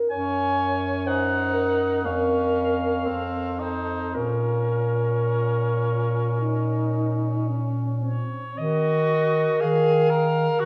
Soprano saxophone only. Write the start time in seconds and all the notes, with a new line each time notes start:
0.10 G#5
1.07 F#5
2.04 F5
3.60 C5
4.14 A#4
8.03 C#5
8.58 D#5
9.60 F5
10.60 F#5